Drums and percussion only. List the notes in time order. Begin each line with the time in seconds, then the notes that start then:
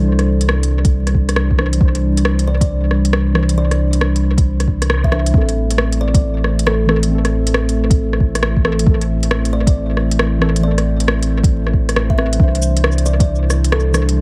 0.19 cross-stick, closed hi-hat
0.41 closed hi-hat
0.49 cross-stick
0.63 closed hi-hat
0.85 kick, closed hi-hat
1.07 cross-stick, closed hi-hat
1.15 kick
1.29 cross-stick, closed hi-hat
1.36 cross-stick
1.51 kick
1.59 cross-stick
1.73 closed hi-hat
1.81 kick
1.95 closed hi-hat
2.17 closed hi-hat
2.25 cross-stick
2.39 closed hi-hat
2.61 kick, closed hi-hat
2.91 cross-stick
3.05 closed hi-hat
3.13 cross-stick
3.35 cross-stick
3.49 closed hi-hat
3.71 cross-stick, closed hi-hat
3.93 closed hi-hat
4.01 cross-stick
4.16 closed hi-hat
4.38 kick, closed hi-hat
4.60 cross-stick, closed hi-hat
4.68 kick
4.82 cross-stick, closed hi-hat
4.90 cross-stick
5.04 kick
5.12 cross-stick
5.26 closed hi-hat
5.34 kick
5.49 closed hi-hat
5.70 closed hi-hat
5.78 cross-stick
5.92 closed hi-hat
6.14 kick, closed hi-hat
6.44 cross-stick
6.59 closed hi-hat
6.67 cross-stick
6.89 cross-stick
7.03 closed hi-hat
7.25 cross-stick, closed hi-hat
7.47 closed hi-hat
7.54 cross-stick
7.69 closed hi-hat
7.90 kick, closed hi-hat
8.13 cross-stick
8.20 kick
8.35 cross-stick, closed hi-hat
8.43 cross-stick
8.57 kick
8.65 cross-stick
8.79 closed hi-hat
8.86 kick
9.01 closed hi-hat
9.23 closed hi-hat
9.31 cross-stick
9.45 closed hi-hat
9.67 kick, closed hi-hat
9.97 cross-stick
10.11 closed hi-hat
10.19 cross-stick
10.42 cross-stick
10.56 closed hi-hat
10.78 cross-stick, closed hi-hat
11.00 closed hi-hat
11.08 cross-stick
11.23 closed hi-hat
11.44 kick, closed hi-hat
11.67 cross-stick
11.74 kick
11.89 cross-stick, closed hi-hat
11.96 cross-stick
12.10 kick
12.19 cross-stick
12.33 closed hi-hat
12.40 kick
12.55 closed hi-hat
12.62 cabasa
12.77 closed hi-hat
12.84 cross-stick
12.98 closed hi-hat
13.06 cabasa
13.20 kick, closed hi-hat
13.50 cross-stick, cabasa
13.64 closed hi-hat
13.72 cross-stick
13.94 cross-stick, cabasa
14.09 closed hi-hat